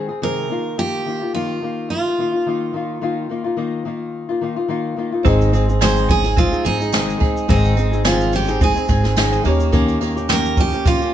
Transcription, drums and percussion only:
5.25 kick loud
5.25 tambourine soft
5.25 shaker medium
5.41 tambourine soft
5.41 shaker soft
5.53 tambourine soft
5.53 shaker medium
5.69 shaker soft
5.81 snare loud
5.81 tambourine medium
5.81 shaker medium
5.97 shaker medium
6.09 kick medium
6.09 tambourine medium
6.24 tambourine soft
6.24 shaker medium
6.37 kick loud
6.37 tambourine soft
6.37 shaker medium
6.53 shaker soft
6.65 tambourine soft
6.65 shaker medium
6.80 tambourine soft
6.80 shaker medium
6.93 snare loud
6.93 tambourine medium
6.93 shaker medium
7.09 shaker soft
7.20 kick medium
7.20 tambourine soft
7.37 shaker medium
7.49 kick loud
7.49 tambourine soft
7.49 shaker medium
7.64 tambourine soft
7.64 shaker soft
7.77 tambourine soft
7.77 shaker medium
7.93 shaker soft
8.05 snare loud
8.05 tambourine medium
8.05 shaker medium
8.20 shaker medium
8.33 tambourine medium
8.33 shaker medium
8.48 shaker medium
8.61 kick loud
8.61 tambourine soft
8.61 shaker medium
8.77 shaker soft
8.89 kick medium
8.89 tambourine soft
8.89 shaker medium
9.04 snare soft
9.04 tambourine soft
9.04 shaker medium
9.17 snare loud
9.17 tambourine medium
9.17 shaker medium
9.33 shaker soft
9.45 tambourine soft
9.45 shaker soft
9.60 tambourine soft
9.60 shaker medium
9.73 kick loud
9.73 tambourine soft
9.73 shaker medium
9.88 tambourine soft
9.88 shaker soft
10.01 tambourine soft
10.01 shaker medium
10.17 shaker soft
10.29 snare loud
10.29 tambourine medium
10.29 shaker medium
10.45 shaker medium
10.57 kick medium
10.57 tambourine medium
10.57 shaker medium
10.73 shaker medium
10.85 kick loud
10.85 tambourine soft
10.85 shaker medium
11.02 shaker soft

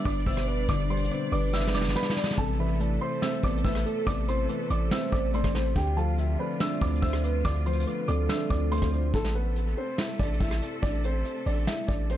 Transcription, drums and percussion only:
0.05 kick loud
0.05 closed hi-hat medium
0.12 closed hi-hat medium
0.20 closed hi-hat medium
0.27 kick loud
0.27 closed hi-hat soft
0.34 cross-stick medium
0.34 closed hi-hat medium
0.41 closed hi-hat medium
0.48 closed hi-hat medium
0.69 kick loud
0.69 closed hi-hat loud
0.90 closed hi-hat soft
0.97 closed hi-hat medium
1.04 closed hi-hat medium
1.11 closed hi-hat medium
1.32 open hi-hat medium
1.53 snare medium
1.60 snare medium
1.67 snare medium
1.74 snare medium
1.82 snare medium
1.89 snare medium
1.96 snare medium
2.03 snare medium
2.10 snare loud
2.17 snare medium
2.24 snare loud
2.31 snare loud
2.38 kick loud
2.38 closed hi-hat loud
2.80 closed hi-hat medium
3.22 snare loud
3.43 kick loud
3.43 closed hi-hat medium
3.51 closed hi-hat medium
3.58 closed hi-hat medium
3.65 kick loud
3.65 closed hi-hat soft
3.72 cross-stick medium
3.72 closed hi-hat medium
3.79 closed hi-hat medium
3.86 closed hi-hat medium
4.07 kick loud
4.07 closed hi-hat loud
4.28 closed hi-hat medium
4.49 closed hi-hat medium
4.70 closed hi-hat medium
4.91 snare loud
5.12 kick medium
5.34 closed hi-hat medium
5.44 kick medium
5.44 cross-stick medium
5.55 snare medium
5.55 open hi-hat medium
5.76 kick loud
5.76 closed hi-hat loud
6.18 closed hi-hat medium
6.60 snare loud
6.81 kick loud
6.81 closed hi-hat medium
6.89 closed hi-hat medium
6.96 closed hi-hat medium
7.03 kick loud
7.03 closed hi-hat soft
7.10 cross-stick medium
7.10 closed hi-hat medium
7.17 closed hi-hat medium
7.24 closed hi-hat medium
7.45 kick loud
7.45 closed hi-hat loud
7.66 closed hi-hat medium
7.73 closed hi-hat medium
7.80 closed hi-hat medium
7.87 closed hi-hat medium
8.08 closed hi-hat medium
8.29 snare loud
8.51 kick loud
8.72 closed hi-hat medium
8.77 closed hi-hat medium
8.82 kick medium
8.82 cross-stick medium
8.82 closed hi-hat medium
8.87 closed hi-hat soft
8.93 closed hi-hat medium
9.14 kick loud
9.14 closed hi-hat medium
9.24 snare medium
9.56 closed hi-hat medium
9.98 cross-stick medium
9.98 snare loud
10.19 kick medium
10.19 closed hi-hat medium
10.27 closed hi-hat medium
10.34 closed hi-hat medium
10.41 kick loud
10.41 closed hi-hat soft
10.48 cross-stick medium
10.48 closed hi-hat medium
10.55 closed hi-hat medium
10.62 closed hi-hat medium
10.83 kick loud
10.83 closed hi-hat loud
11.04 closed hi-hat medium
11.25 closed hi-hat medium
11.46 open hi-hat medium
11.67 snare loud
11.67 hi-hat pedal medium
11.89 kick medium
12.10 closed hi-hat medium

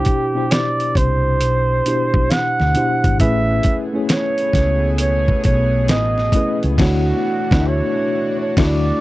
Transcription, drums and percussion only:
0.05 kick medium
0.05 closed hi-hat medium
0.51 snare loud
0.51 closed hi-hat medium
0.80 closed hi-hat medium
0.95 kick loud
0.95 closed hi-hat medium
1.41 closed hi-hat medium
1.86 closed hi-hat medium
2.14 kick loud
2.30 snare loud
2.30 closed hi-hat medium
2.60 snare soft
2.75 closed hi-hat medium
3.04 kick medium
3.04 closed hi-hat soft
3.20 kick loud
3.20 closed hi-hat medium
3.63 kick medium
3.63 closed hi-hat medium
4.09 snare loud
4.09 closed hi-hat medium
4.38 closed hi-hat medium
4.53 kick loud
4.53 snare soft
4.53 closed hi-hat medium
4.98 closed hi-hat medium
5.28 kick medium
5.44 kick loud
5.44 closed hi-hat medium
5.88 snare loud
5.88 closed hi-hat medium
6.18 snare soft
6.32 kick loud
6.32 closed hi-hat medium
6.63 closed hi-hat soft
6.78 kick loud
6.78 snare loud
6.78 crash medium
7.51 kick loud
7.51 snare loud
8.57 kick loud
8.57 snare loud
8.57 crash medium

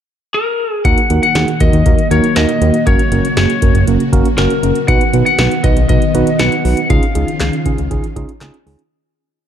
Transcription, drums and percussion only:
0.85 kick loud
0.85 closed hi-hat medium
0.98 closed hi-hat medium
1.10 closed hi-hat medium
1.23 closed hi-hat medium
1.35 snare loud
1.35 closed hi-hat medium
1.48 closed hi-hat soft
1.60 kick medium
1.60 closed hi-hat medium
1.73 closed hi-hat medium
1.86 kick medium
1.86 closed hi-hat medium
1.99 closed hi-hat soft
2.11 closed hi-hat medium
2.24 closed hi-hat medium
2.36 snare loud
2.36 closed hi-hat medium
2.49 closed hi-hat soft
2.62 closed hi-hat medium
2.74 closed hi-hat medium
2.87 kick loud
2.87 closed hi-hat medium
2.99 closed hi-hat medium
3.12 closed hi-hat medium
3.25 closed hi-hat medium
3.37 snare loud
3.37 closed hi-hat medium
3.50 closed hi-hat medium
3.62 kick medium
3.62 closed hi-hat medium
3.75 closed hi-hat medium
3.87 closed hi-hat medium
4.00 closed hi-hat soft
4.13 kick medium
4.13 closed hi-hat medium
4.25 closed hi-hat medium
4.38 snare loud
4.38 closed hi-hat medium
4.50 closed hi-hat medium
4.63 closed hi-hat medium
4.75 closed hi-hat medium
4.88 kick loud
4.88 closed hi-hat medium
5.01 closed hi-hat medium
5.13 closed hi-hat medium
5.26 closed hi-hat medium
5.39 snare loud
5.39 closed hi-hat medium
5.51 closed hi-hat medium
5.64 kick medium
5.64 closed hi-hat medium
5.77 closed hi-hat medium
5.89 kick medium
5.89 closed hi-hat medium
6.02 closed hi-hat soft
6.15 closed hi-hat medium
6.27 closed hi-hat medium
6.39 snare loud
6.39 closed hi-hat medium
6.52 closed hi-hat soft
6.65 open hi-hat medium
6.77 closed hi-hat medium
6.90 kick loud
6.90 closed hi-hat medium
7.03 closed hi-hat medium
7.15 closed hi-hat medium
7.28 closed hi-hat medium
7.40 snare loud
7.40 clap medium
7.40 closed hi-hat medium
7.53 closed hi-hat medium
7.66 kick medium
7.66 closed hi-hat medium
7.78 closed hi-hat medium
7.91 kick medium
7.91 closed hi-hat medium
8.04 closed hi-hat soft
8.16 kick medium
8.16 closed hi-hat medium
8.29 closed hi-hat medium
8.41 snare loud
8.41 clap loud
8.41 closed hi-hat medium
8.54 closed hi-hat medium
8.67 open hi-hat medium
8.79 closed hi-hat medium

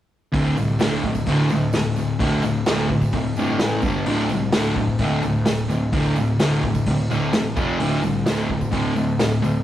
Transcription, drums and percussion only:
0.34 kick loud
0.34 open hi-hat soft
0.34 tambourine soft
0.46 tambourine soft
0.57 tambourine medium
0.79 snare loud
0.79 open hi-hat medium
0.79 tambourine medium
1.04 kick medium
1.15 kick medium
1.15 tambourine medium
1.26 kick medium
1.26 open hi-hat medium
1.49 tambourine medium
1.61 tambourine soft
1.73 snare medium
1.73 open hi-hat medium
1.73 tambourine medium
1.84 tambourine soft
1.96 tambourine medium
2.19 kick loud
2.19 open hi-hat medium
2.19 tambourine soft
2.31 tambourine soft
2.42 tambourine medium
2.66 snare loud
2.66 open hi-hat medium
2.66 tambourine medium
2.90 kick medium
3.01 kick medium
3.01 tambourine medium
3.12 kick loud
3.12 open hi-hat medium
3.12 tambourine soft
3.36 tambourine medium
3.59 snare loud
3.59 open hi-hat soft
3.59 tambourine medium
3.82 kick loud
3.82 tambourine medium
4.06 open hi-hat medium
4.06 tambourine soft
4.18 tambourine soft
4.29 tambourine medium
4.52 snare loud
4.52 open hi-hat medium
4.52 tambourine medium
4.76 kick medium
4.88 kick medium
4.98 kick medium
4.98 open hi-hat medium
4.98 tambourine soft
5.23 tambourine medium
5.35 tambourine soft
5.45 snare loud
5.45 open hi-hat medium
5.45 tambourine medium
5.58 tambourine soft
5.70 tambourine medium
5.93 kick loud
5.93 open hi-hat medium
5.93 tambourine soft
6.04 tambourine soft
6.16 tambourine medium
6.27 tambourine soft
6.40 snare loud
6.40 open hi-hat medium
6.40 tambourine medium
6.63 kick medium
6.63 tambourine soft
6.75 kick medium
6.75 tambourine medium
6.86 kick medium
6.86 open hi-hat medium
6.99 tambourine soft
7.11 tambourine medium
7.22 tambourine soft
7.33 snare loud
7.33 open hi-hat soft
7.33 tambourine medium
7.57 kick loud
7.57 tambourine medium
7.69 tambourine soft
7.80 open hi-hat medium
7.80 tambourine soft
7.92 tambourine soft
8.03 tambourine medium
8.26 snare loud
8.26 open hi-hat medium
8.26 tambourine medium
8.50 kick medium
8.61 kick medium
8.61 tambourine medium
8.72 kick medium
8.72 open hi-hat soft
8.72 tambourine soft
8.96 tambourine medium
9.08 tambourine soft
9.19 snare loud
9.19 open hi-hat soft
9.19 tambourine medium
9.32 tambourine soft
9.44 tambourine medium

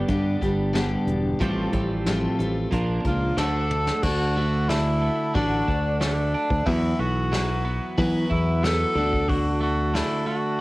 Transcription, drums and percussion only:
0.08 kick loud
0.08 closed hi-hat medium
0.42 kick medium
0.42 closed hi-hat medium
0.75 snare medium
0.75 closed hi-hat medium
1.07 closed hi-hat medium
1.40 kick loud
1.40 closed hi-hat medium
1.73 kick medium
1.73 closed hi-hat medium
2.06 snare loud
2.06 closed hi-hat medium
2.40 closed hi-hat medium
2.72 kick loud
2.72 closed hi-hat medium
3.05 kick medium
3.05 closed hi-hat medium
3.38 snare loud
3.38 closed hi-hat medium
3.71 high tom medium
3.87 snare medium
4.03 kick loud
4.03 crash medium
4.69 snare medium
4.69 open hi-hat soft
5.35 kick loud
5.35 open hi-hat soft
5.68 kick medium
6.01 snare medium
6.01 open hi-hat soft
6.50 kick medium
6.66 kick loud
6.66 open hi-hat soft
7.32 snare loud
7.32 open hi-hat medium
7.98 kick loud
7.98 open hi-hat medium
8.31 kick medium
8.64 snare loud
8.64 open hi-hat soft
9.13 kick medium
9.29 kick loud
9.29 open hi-hat soft
9.95 snare loud
9.95 open hi-hat soft

